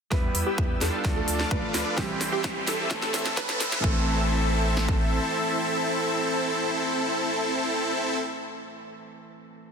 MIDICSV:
0, 0, Header, 1, 8, 480
1, 0, Start_track
1, 0, Key_signature, 0, "minor"
1, 0, Tempo, 465116
1, 121, Time_signature, 4, 2, 24, 8
1, 10030, End_track
2, 0, Start_track
2, 0, Title_t, "Analog synth pad"
2, 0, Program_c, 0, 89
2, 118, Note_on_c, 0, 79, 70
2, 119, Note_on_c, 0, 71, 77
2, 119, Note_on_c, 0, 88, 85
2, 1070, Note_off_c, 0, 71, 0
2, 1070, Note_off_c, 0, 79, 0
2, 1070, Note_off_c, 0, 88, 0
2, 1079, Note_on_c, 0, 69, 76
2, 1080, Note_on_c, 0, 86, 85
2, 1081, Note_on_c, 0, 77, 70
2, 2030, Note_off_c, 0, 69, 0
2, 2030, Note_off_c, 0, 86, 0
2, 2031, Note_off_c, 0, 77, 0
2, 2038, Note_on_c, 0, 67, 80
2, 2038, Note_on_c, 0, 76, 78
2, 2039, Note_on_c, 0, 84, 85
2, 2989, Note_off_c, 0, 67, 0
2, 2990, Note_off_c, 0, 84, 0
2, 3000, Note_on_c, 0, 69, 75
2, 3940, Note_off_c, 0, 76, 0
2, 3951, Note_off_c, 0, 69, 0
2, 3961, Note_on_c, 0, 60, 85
2, 3961, Note_on_c, 0, 76, 96
2, 3962, Note_on_c, 0, 69, 79
2, 8434, Note_off_c, 0, 60, 0
2, 8435, Note_off_c, 0, 76, 0
2, 8436, Note_off_c, 0, 69, 0
2, 10030, End_track
3, 0, Start_track
3, 0, Title_t, "Synth pluck"
3, 0, Program_c, 1, 84
3, 119, Note_on_c, 1, 67, 86
3, 451, Note_off_c, 1, 67, 0
3, 479, Note_on_c, 1, 67, 104
3, 717, Note_off_c, 1, 67, 0
3, 839, Note_on_c, 1, 69, 86
3, 1171, Note_off_c, 1, 69, 0
3, 1199, Note_on_c, 1, 69, 106
3, 1531, Note_off_c, 1, 69, 0
3, 1559, Note_on_c, 1, 71, 105
3, 2011, Note_off_c, 1, 71, 0
3, 2037, Note_on_c, 1, 67, 86
3, 2370, Note_off_c, 1, 67, 0
3, 2398, Note_on_c, 1, 67, 109
3, 2636, Note_off_c, 1, 67, 0
3, 2759, Note_on_c, 1, 69, 85
3, 3091, Note_off_c, 1, 69, 0
3, 3118, Note_on_c, 1, 69, 104
3, 3450, Note_off_c, 1, 69, 0
3, 3479, Note_on_c, 1, 71, 107
3, 3931, Note_off_c, 1, 71, 0
3, 3960, Note_on_c, 1, 69, 99
3, 8434, Note_off_c, 1, 69, 0
3, 10030, End_track
4, 0, Start_track
4, 0, Title_t, "Supersaw synth"
4, 0, Program_c, 2, 81
4, 119, Note_on_c, 2, 59, 80
4, 119, Note_on_c, 2, 64, 73
4, 120, Note_on_c, 2, 67, 86
4, 451, Note_off_c, 2, 59, 0
4, 451, Note_off_c, 2, 64, 0
4, 451, Note_off_c, 2, 67, 0
4, 479, Note_on_c, 2, 59, 91
4, 479, Note_on_c, 2, 64, 85
4, 479, Note_on_c, 2, 67, 101
4, 717, Note_off_c, 2, 59, 0
4, 717, Note_off_c, 2, 64, 0
4, 717, Note_off_c, 2, 67, 0
4, 839, Note_on_c, 2, 62, 75
4, 839, Note_on_c, 2, 65, 67
4, 839, Note_on_c, 2, 69, 85
4, 1171, Note_off_c, 2, 62, 0
4, 1171, Note_off_c, 2, 65, 0
4, 1171, Note_off_c, 2, 69, 0
4, 1199, Note_on_c, 2, 62, 96
4, 1199, Note_on_c, 2, 69, 104
4, 1200, Note_on_c, 2, 65, 85
4, 1531, Note_off_c, 2, 62, 0
4, 1531, Note_off_c, 2, 65, 0
4, 1531, Note_off_c, 2, 69, 0
4, 1559, Note_on_c, 2, 62, 90
4, 1559, Note_on_c, 2, 65, 87
4, 1559, Note_on_c, 2, 71, 103
4, 2011, Note_off_c, 2, 62, 0
4, 2011, Note_off_c, 2, 65, 0
4, 2011, Note_off_c, 2, 71, 0
4, 2040, Note_on_c, 2, 60, 81
4, 2040, Note_on_c, 2, 64, 71
4, 2040, Note_on_c, 2, 67, 90
4, 2371, Note_off_c, 2, 60, 0
4, 2371, Note_off_c, 2, 64, 0
4, 2371, Note_off_c, 2, 67, 0
4, 2399, Note_on_c, 2, 67, 107
4, 2400, Note_on_c, 2, 60, 98
4, 2400, Note_on_c, 2, 64, 84
4, 2637, Note_off_c, 2, 60, 0
4, 2637, Note_off_c, 2, 64, 0
4, 2637, Note_off_c, 2, 67, 0
4, 2760, Note_on_c, 2, 60, 77
4, 2760, Note_on_c, 2, 64, 73
4, 2760, Note_on_c, 2, 69, 86
4, 3091, Note_off_c, 2, 60, 0
4, 3091, Note_off_c, 2, 64, 0
4, 3091, Note_off_c, 2, 69, 0
4, 3120, Note_on_c, 2, 60, 98
4, 3120, Note_on_c, 2, 64, 86
4, 3120, Note_on_c, 2, 69, 106
4, 3451, Note_off_c, 2, 60, 0
4, 3451, Note_off_c, 2, 64, 0
4, 3451, Note_off_c, 2, 69, 0
4, 3481, Note_on_c, 2, 64, 84
4, 3481, Note_on_c, 2, 71, 102
4, 3482, Note_on_c, 2, 60, 96
4, 3932, Note_off_c, 2, 60, 0
4, 3932, Note_off_c, 2, 64, 0
4, 3932, Note_off_c, 2, 71, 0
4, 3961, Note_on_c, 2, 64, 80
4, 3962, Note_on_c, 2, 60, 92
4, 3962, Note_on_c, 2, 69, 96
4, 8435, Note_off_c, 2, 64, 0
4, 8436, Note_off_c, 2, 60, 0
4, 8436, Note_off_c, 2, 69, 0
4, 10030, End_track
5, 0, Start_track
5, 0, Title_t, "Grand piano"
5, 0, Program_c, 3, 0
5, 107, Note_on_c, 3, 55, 77
5, 115, Note_on_c, 3, 59, 76
5, 124, Note_on_c, 3, 64, 72
5, 132, Note_on_c, 3, 71, 90
5, 294, Control_c, 3, 64, 127
5, 1026, Note_off_c, 3, 55, 0
5, 1030, Note_off_c, 3, 59, 0
5, 1034, Note_off_c, 3, 64, 0
5, 1038, Note_off_c, 3, 71, 0
5, 1066, Note_on_c, 3, 53, 78
5, 1074, Note_on_c, 3, 57, 71
5, 1083, Note_on_c, 3, 62, 72
5, 1091, Note_on_c, 3, 69, 85
5, 1093, Control_c, 3, 64, 0
5, 1280, Control_c, 3, 64, 127
5, 1985, Note_off_c, 3, 53, 0
5, 1989, Note_off_c, 3, 57, 0
5, 1994, Note_off_c, 3, 62, 0
5, 1998, Note_off_c, 3, 69, 0
5, 2027, Note_on_c, 3, 52, 81
5, 2036, Note_on_c, 3, 55, 76
5, 2044, Note_on_c, 3, 60, 77
5, 2052, Note_on_c, 3, 67, 92
5, 2056, Control_c, 3, 64, 0
5, 2220, Control_c, 3, 64, 127
5, 2946, Note_off_c, 3, 52, 0
5, 2950, Note_off_c, 3, 55, 0
5, 2954, Note_off_c, 3, 60, 0
5, 2958, Note_off_c, 3, 67, 0
5, 2988, Note_on_c, 3, 45, 80
5, 2994, Note_on_c, 3, 52, 76
5, 3001, Note_on_c, 3, 57, 74
5, 3007, Note_on_c, 3, 60, 74
5, 3013, Control_c, 3, 64, 0
5, 3013, Note_on_c, 3, 69, 91
5, 3183, Control_c, 3, 64, 127
5, 3906, Note_off_c, 3, 45, 0
5, 3909, Note_off_c, 3, 52, 0
5, 3913, Note_off_c, 3, 57, 0
5, 3916, Note_off_c, 3, 60, 0
5, 3919, Note_off_c, 3, 69, 0
5, 3942, Note_on_c, 3, 52, 91
5, 3955, Note_on_c, 3, 57, 83
5, 3967, Note_on_c, 3, 60, 84
5, 3975, Control_c, 3, 64, 0
5, 3979, Note_on_c, 3, 69, 96
5, 4178, Control_c, 3, 64, 127
5, 8416, Note_off_c, 3, 52, 0
5, 8429, Note_off_c, 3, 57, 0
5, 8441, Note_off_c, 3, 60, 0
5, 8453, Note_off_c, 3, 69, 0
5, 10030, End_track
6, 0, Start_track
6, 0, Title_t, "Sub bass"
6, 0, Program_c, 4, 38
6, 120, Note_on_c, 4, 40, 100
6, 290, Note_off_c, 4, 40, 0
6, 360, Note_on_c, 4, 40, 100
6, 445, Note_off_c, 4, 40, 0
6, 600, Note_on_c, 4, 40, 83
6, 770, Note_off_c, 4, 40, 0
6, 840, Note_on_c, 4, 40, 93
6, 925, Note_off_c, 4, 40, 0
6, 1080, Note_on_c, 4, 38, 82
6, 1250, Note_off_c, 4, 38, 0
6, 1319, Note_on_c, 4, 38, 91
6, 1489, Note_off_c, 4, 38, 0
6, 1560, Note_on_c, 4, 38, 100
6, 1645, Note_off_c, 4, 38, 0
6, 1799, Note_on_c, 4, 38, 84
6, 1885, Note_off_c, 4, 38, 0
6, 2040, Note_on_c, 4, 36, 101
6, 2210, Note_off_c, 4, 36, 0
6, 2280, Note_on_c, 4, 36, 102
6, 2365, Note_off_c, 4, 36, 0
6, 2520, Note_on_c, 4, 36, 84
6, 2690, Note_off_c, 4, 36, 0
6, 2760, Note_on_c, 4, 36, 97
6, 2845, Note_off_c, 4, 36, 0
6, 3001, Note_on_c, 4, 33, 86
6, 3170, Note_off_c, 4, 33, 0
6, 3240, Note_on_c, 4, 33, 94
6, 3410, Note_off_c, 4, 33, 0
6, 3481, Note_on_c, 4, 33, 99
6, 3566, Note_off_c, 4, 33, 0
6, 3721, Note_on_c, 4, 33, 83
6, 3806, Note_off_c, 4, 33, 0
6, 3962, Note_on_c, 4, 33, 103
6, 5360, Note_off_c, 4, 33, 0
6, 10030, End_track
7, 0, Start_track
7, 0, Title_t, "Riser"
7, 0, Program_c, 5, 103
7, 119, Note_on_c, 5, 60, 78
7, 3960, Note_off_c, 5, 60, 0
7, 10030, End_track
8, 0, Start_track
8, 0, Title_t, "Drums"
8, 119, Note_on_c, 9, 36, 115
8, 119, Note_on_c, 9, 38, 49
8, 222, Note_off_c, 9, 38, 0
8, 223, Note_off_c, 9, 36, 0
8, 359, Note_on_c, 9, 46, 107
8, 462, Note_off_c, 9, 46, 0
8, 600, Note_on_c, 9, 36, 117
8, 703, Note_off_c, 9, 36, 0
8, 839, Note_on_c, 9, 38, 57
8, 839, Note_on_c, 9, 46, 90
8, 942, Note_off_c, 9, 38, 0
8, 942, Note_off_c, 9, 46, 0
8, 1079, Note_on_c, 9, 38, 60
8, 1080, Note_on_c, 9, 36, 115
8, 1182, Note_off_c, 9, 38, 0
8, 1183, Note_off_c, 9, 36, 0
8, 1319, Note_on_c, 9, 46, 109
8, 1422, Note_off_c, 9, 46, 0
8, 1439, Note_on_c, 9, 38, 57
8, 1542, Note_off_c, 9, 38, 0
8, 1560, Note_on_c, 9, 36, 117
8, 1663, Note_off_c, 9, 36, 0
8, 1798, Note_on_c, 9, 38, 72
8, 1798, Note_on_c, 9, 46, 93
8, 1901, Note_off_c, 9, 38, 0
8, 1901, Note_off_c, 9, 46, 0
8, 2039, Note_on_c, 9, 38, 73
8, 2040, Note_on_c, 9, 36, 124
8, 2142, Note_off_c, 9, 38, 0
8, 2143, Note_off_c, 9, 36, 0
8, 2278, Note_on_c, 9, 38, 80
8, 2278, Note_on_c, 9, 46, 114
8, 2381, Note_off_c, 9, 38, 0
8, 2381, Note_off_c, 9, 46, 0
8, 2519, Note_on_c, 9, 38, 78
8, 2520, Note_on_c, 9, 36, 120
8, 2622, Note_off_c, 9, 38, 0
8, 2623, Note_off_c, 9, 36, 0
8, 2760, Note_on_c, 9, 38, 86
8, 2760, Note_on_c, 9, 46, 97
8, 2863, Note_off_c, 9, 38, 0
8, 2863, Note_off_c, 9, 46, 0
8, 3000, Note_on_c, 9, 36, 123
8, 3000, Note_on_c, 9, 38, 95
8, 3103, Note_off_c, 9, 38, 0
8, 3104, Note_off_c, 9, 36, 0
8, 3120, Note_on_c, 9, 38, 81
8, 3223, Note_off_c, 9, 38, 0
8, 3240, Note_on_c, 9, 38, 98
8, 3240, Note_on_c, 9, 46, 111
8, 3343, Note_off_c, 9, 38, 0
8, 3343, Note_off_c, 9, 46, 0
8, 3360, Note_on_c, 9, 38, 89
8, 3463, Note_off_c, 9, 38, 0
8, 3481, Note_on_c, 9, 36, 124
8, 3481, Note_on_c, 9, 38, 105
8, 3584, Note_off_c, 9, 36, 0
8, 3584, Note_off_c, 9, 38, 0
8, 3601, Note_on_c, 9, 38, 97
8, 3704, Note_off_c, 9, 38, 0
8, 3721, Note_on_c, 9, 38, 110
8, 3721, Note_on_c, 9, 46, 101
8, 3824, Note_off_c, 9, 38, 0
8, 3824, Note_off_c, 9, 46, 0
8, 3842, Note_on_c, 9, 38, 98
8, 3945, Note_off_c, 9, 38, 0
8, 3962, Note_on_c, 9, 36, 112
8, 4065, Note_off_c, 9, 36, 0
8, 4922, Note_on_c, 9, 38, 62
8, 5025, Note_off_c, 9, 38, 0
8, 5041, Note_on_c, 9, 36, 79
8, 5145, Note_off_c, 9, 36, 0
8, 10030, End_track
0, 0, End_of_file